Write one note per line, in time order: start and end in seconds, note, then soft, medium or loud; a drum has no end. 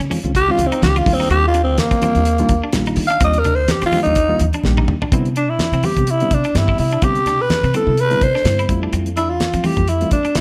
0.00 closed hi-hat soft
0.10 0.19 D#3 medium
0.10 0.19 G#3 medium
0.10 0.19 C4 medium
0.10 0.19 C#4 medium
0.10 0.29 C#4 medium
0.10 0.19 F4 medium
0.10 open hi-hat medium
0.10 high conga medium
0.23 0.52 C#2 medium
0.23 0.31 D#3 medium
0.23 0.31 G#3 medium
0.23 0.31 C4 medium
0.23 0.31 C#4 medium
0.23 0.31 F4 medium
0.23 closed hi-hat soft
0.35 0.53 G4 loud
0.35 kick medium
0.35 closed hi-hat medium
0.35 muted conga soft
0.49 0.62 D#3 medium
0.49 0.62 G#3 medium
0.49 0.62 C4 medium
0.49 0.63 C#4 medium
0.49 0.62 F4 medium
0.49 0.68 F4 loud
0.58 0.69 C#2 loud
0.58 closed hi-hat medium
0.58 high conga medium
0.67 0.82 C4 medium
0.72 0.77 C#4 soft
0.72 0.90 D#4 medium
0.72 0.78 F4 soft
0.72 closed hi-hat soft
0.82 1.02 C#2 medium
0.82 1.06 D#3 medium
0.82 1.07 G#3 medium
0.82 1.07 C4 medium
0.82 1.07 C#4 medium
0.82 1.05 F4 medium
0.82 1.00 G4 medium
0.82 snare loud
0.82 closed hi-hat medium
0.82 muted conga soft
0.82 high conga medium
0.82 low conga medium
0.96 1.14 F4 medium
0.96 1.15 F4 medium
0.96 closed hi-hat soft
1.06 1.26 D#2 loud
1.06 1.46 D#3 medium
1.06 1.46 G3 medium
1.06 1.46 A#3 medium
1.06 1.46 D4 medium
1.06 1.46 F4 medium
1.06 kick loud
1.06 open hi-hat medium
1.14 1.30 C4 loud
1.20 1.28 D#4 medium
1.20 snare soft
1.30 1.66 D#2 medium
1.30 1.49 C4 medium
1.30 1.46 G4 loud
1.30 closed hi-hat medium
1.30 muted conga soft
1.47 1.62 F4 loud
1.54 1.73 D4 medium
1.54 1.61 D4 soft
1.54 1.61 F4 soft
1.54 closed hi-hat medium
1.54 muted conga soft
1.64 1.75 D2 medium
1.64 1.81 C4 medium
1.78 2.71 A#3 loud
1.78 snare medium
1.78 closed hi-hat medium
1.78 high conga medium
1.91 2.00 D#3 medium
1.91 1.99 C4 medium
1.91 kick medium
1.91 closed hi-hat soft
2.02 2.10 D#3 medium
2.02 2.10 G3 medium
2.02 2.10 A#3 medium
2.02 2.21 C4 medium
2.02 2.10 D4 medium
2.02 2.10 F4 medium
2.02 closed hi-hat medium
2.02 high conga medium
2.15 2.43 D#2 medium
2.15 2.22 D#3 medium
2.15 2.22 G3 medium
2.15 2.22 A#3 medium
2.15 2.22 D4 medium
2.15 2.22 F4 medium
2.15 closed hi-hat soft
2.25 2.32 D4 soft
2.25 2.33 G4 soft
2.25 closed hi-hat medium
2.25 muted conga soft
2.38 2.53 D#3 loud
2.38 2.53 G3 loud
2.38 2.53 A#3 loud
2.38 2.53 D4 loud
2.38 2.53 F4 loud
2.38 closed hi-hat soft
2.49 2.60 D#2 medium
2.49 kick medium
2.49 closed hi-hat medium
2.64 2.82 D4 medium
2.64 2.69 D4 soft
2.64 2.69 G4 soft
2.73 2.93 A#1 medium
2.73 3.04 D#3 medium
2.73 3.04 G3 medium
2.73 3.04 A#3 medium
2.73 3.04 D4 medium
2.73 3.04 F4 medium
2.73 snare loud
2.73 closed hi-hat medium
2.73 muted conga soft
2.73 high conga medium
2.86 3.05 D#4 medium
2.86 closed hi-hat soft
2.96 3.16 D#3 loud
2.96 open hi-hat medium
3.07 3.19 D4 medium
3.07 3.22 F5 medium
3.07 closed hi-hat soft
3.20 3.58 D#2 loud
3.20 3.37 D#3 medium
3.20 3.37 G3 medium
3.20 3.37 A#3 medium
3.20 3.39 C4 medium
3.20 3.37 D4 medium
3.20 3.37 F4 loud
3.20 3.40 D#5 loud
3.20 kick medium
3.20 closed hi-hat medium
3.20 muted conga soft
3.33 closed hi-hat soft
3.39 3.57 A#4 loud
3.44 3.51 D4 soft
3.44 3.63 D4 medium
3.44 3.51 G4 soft
3.44 closed hi-hat medium
3.44 muted conga soft
3.44 low conga medium
3.56 3.67 D2 medium
3.56 3.73 C5 medium
3.68 3.85 G4 medium
3.68 snare loud
3.68 closed hi-hat medium
3.68 high conga medium
3.81 3.91 D#3 medium
3.81 3.90 C4 medium
3.81 snare soft
3.81 closed hi-hat soft
3.86 4.01 F4 loud
3.92 4.01 D#3 medium
3.92 4.01 G3 medium
3.92 4.01 A#3 medium
3.92 4.11 C4 medium
3.92 4.01 D4 medium
3.92 4.01 G4 medium
3.92 open hi-hat medium
3.92 high conga medium
4.03 4.34 D#2 medium
4.03 4.12 D#3 medium
4.03 4.12 G3 medium
4.03 4.12 A#3 medium
4.03 4.12 D4 medium
4.03 4.48 D#4 loud
4.03 4.12 F4 medium
4.03 closed hi-hat soft
4.15 4.23 D4 soft
4.15 4.23 G4 soft
4.15 kick medium
4.15 closed hi-hat medium
4.15 muted conga soft
4.29 4.43 D#3 loud
4.29 4.43 G3 medium
4.29 4.43 A#3 medium
4.29 4.44 D4 medium
4.29 4.43 F4 loud
4.39 4.51 D#2 medium
4.39 closed hi-hat medium
4.39 high conga medium
4.53 4.59 D4 soft
4.53 4.72 D4 medium
4.53 4.59 G4 soft
4.53 closed hi-hat soft
4.64 4.84 A#1 medium
4.64 4.95 D#3 medium
4.64 4.95 G3 medium
4.64 4.95 A#3 medium
4.64 4.95 D4 medium
4.64 4.95 G4 medium
4.64 snare medium
4.64 muted conga soft
4.64 high conga medium
4.64 low conga medium
4.77 4.96 D#4 medium
4.77 high tom medium
4.88 5.07 D#3 loud
4.88 mid tom medium
5.02 5.10 D4 medium
5.02 floor tom medium
5.11 5.48 C3 medium
5.11 5.28 D3 medium
5.11 5.28 G3 medium
5.11 5.28 B3 loud
5.11 5.28 C4 loud
5.11 5.31 C4 medium
5.11 5.29 E4 loud
5.11 kick loud
5.11 closed hi-hat medium
5.11 muted conga soft
5.25 closed hi-hat soft
5.35 5.55 D4 medium
5.35 5.51 D4 medium
5.35 closed hi-hat medium
5.35 muted conga soft
5.48 5.57 B2 medium
5.48 5.87 E4 medium
5.59 snare medium
5.59 closed hi-hat medium
5.59 high conga medium
5.72 5.81 C3 medium
5.72 5.81 C4 medium
5.72 closed hi-hat soft
5.83 5.92 D3 medium
5.83 5.92 G3 medium
5.83 5.92 B3 medium
5.83 6.02 C4 medium
5.83 5.92 C4 medium
5.83 5.92 G4 medium
5.83 6.12 G4 medium
5.83 open hi-hat medium
5.83 high conga medium
5.96 6.25 C3 medium
5.96 6.04 D3 medium
5.96 6.04 G3 medium
5.96 6.04 B3 medium
5.96 6.04 C4 medium
5.96 6.04 G4 medium
5.96 kick medium
5.96 closed hi-hat soft
6.07 6.14 C4 soft
6.07 6.14 D4 soft
6.07 6.36 E4 medium
6.07 closed hi-hat medium
6.07 muted conga soft
6.20 6.35 D3 medium
6.20 6.35 G3 medium
6.20 6.35 B3 medium
6.20 6.35 C4 medium
6.20 6.35 D4 medium
6.20 closed hi-hat soft
6.31 6.42 C3 medium
6.31 6.59 D4 medium
6.31 kick medium
6.31 closed hi-hat medium
6.44 6.50 C4 soft
6.44 6.63 D4 medium
6.44 6.50 E4 soft
6.44 closed hi-hat soft
6.55 6.74 G2 medium
6.55 6.86 D3 medium
6.55 6.86 G3 medium
6.55 6.86 B3 medium
6.55 6.86 C4 medium
6.55 6.79 E4 medium
6.55 6.86 G4 medium
6.55 snare loud
6.55 closed hi-hat medium
6.55 muted conga soft
6.55 high conga medium
6.68 6.87 E4 medium
6.68 kick medium
6.78 6.98 C3 medium
6.78 7.05 E4 medium
6.78 open hi-hat medium
6.91 7.00 D4 medium
6.91 closed hi-hat soft
7.02 7.40 C3 medium
7.02 7.18 D3 medium
7.02 7.18 G3 medium
7.02 7.19 B3 medium
7.02 7.19 C4 medium
7.02 7.22 C4 medium
7.02 7.18 G4 medium
7.02 7.43 G4 medium
7.02 kick loud
7.02 closed hi-hat medium
7.15 closed hi-hat soft
7.26 7.33 C4 soft
7.26 7.45 D4 medium
7.26 7.33 E4 soft
7.26 snare soft
7.26 closed hi-hat medium
7.26 muted conga soft
7.26 low conga medium
7.40 7.48 B2 medium
7.40 7.75 B4 medium
7.50 snare medium
7.50 closed hi-hat medium
7.50 high conga medium
7.63 7.72 C3 medium
7.63 7.72 C4 medium
7.63 closed hi-hat soft
7.74 7.82 D3 medium
7.74 7.82 G3 medium
7.74 7.82 B3 medium
7.74 7.82 C4 medium
7.74 7.93 C4 medium
7.74 7.82 E4 medium
7.74 8.02 A4 medium
7.74 closed hi-hat medium
7.86 8.15 C3 medium
7.86 7.93 D3 medium
7.86 7.94 G3 medium
7.86 7.93 B3 medium
7.86 7.94 C4 medium
7.86 7.94 E4 medium
7.97 8.25 B4 loud
7.97 closed hi-hat medium
7.97 muted conga soft
8.11 8.25 D3 medium
8.11 8.25 G3 medium
8.11 8.25 B3 medium
8.11 8.25 C4 medium
8.11 8.25 E4 medium
8.11 closed hi-hat soft
8.21 8.32 C3 medium
8.21 8.70 C5 medium
8.21 kick medium
8.21 closed hi-hat medium
8.35 8.53 D4 medium
8.35 snare soft
8.45 8.64 G2 medium
8.45 8.69 D3 medium
8.45 8.69 G3 medium
8.45 8.69 B3 medium
8.45 8.69 C4 medium
8.45 8.69 E4 medium
8.45 snare loud
8.45 closed hi-hat medium
8.45 muted conga soft
8.45 high conga medium
8.45 low conga medium
8.59 8.77 E4 medium
8.59 closed hi-hat soft
8.69 8.89 F2 medium
8.69 9.09 G3 medium
8.69 9.09 A3 medium
8.69 9.09 C4 medium
8.69 9.09 E4 medium
8.69 9.09 F4 medium
8.69 kick loud
8.69 closed hi-hat medium
8.83 8.91 D4 medium
8.93 9.29 F2 medium
8.93 9.11 C4 medium
8.93 closed hi-hat medium
8.93 muted conga soft
9.06 closed hi-hat soft
9.16 9.23 C4 soft
9.16 9.35 D4 medium
9.16 9.31 E4 medium
9.16 9.23 G4 soft
9.16 closed hi-hat medium
9.16 muted conga soft
9.29 9.38 E2 medium
9.29 9.68 F4 medium
9.40 snare medium
9.40 closed hi-hat medium
9.40 high conga medium
9.53 9.62 F3 medium
9.53 9.62 C4 medium
9.53 closed hi-hat soft
9.64 9.73 E3 medium
9.64 9.73 G3 medium
9.64 9.73 A3 medium
9.64 9.82 C4 medium
9.64 9.73 C4 medium
9.64 9.73 E4 medium
9.64 9.91 G4 medium
9.64 open hi-hat medium
9.64 high conga medium
9.77 10.05 F2 medium
9.77 9.84 E3 medium
9.77 9.84 G3 medium
9.77 9.84 A3 medium
9.77 9.84 C4 medium
9.77 9.84 F4 medium
9.77 kick medium
9.77 closed hi-hat soft
9.88 10.12 E4 medium
9.88 closed hi-hat medium
9.88 muted conga soft
10.01 10.15 E3 medium
10.01 10.15 G3 medium
10.01 10.15 A3 medium
10.01 10.15 C4 medium
10.01 10.15 F4 medium
10.01 closed hi-hat soft
10.11 10.22 F2 medium
10.11 10.39 D4 medium
10.11 kick medium
10.11 closed hi-hat medium
10.25 10.30 C4 soft
10.25 10.41 D4 medium
10.25 10.30 G4 soft
10.25 closed hi-hat soft
10.35 10.41 C2 medium
10.35 10.41 E3 medium
10.35 10.41 G3 medium
10.35 10.41 A3 medium
10.35 10.41 C4 medium
10.35 10.41 E4 medium
10.35 10.41 F4 medium
10.35 snare loud
10.35 closed hi-hat medium
10.35 muted conga soft
10.35 high conga medium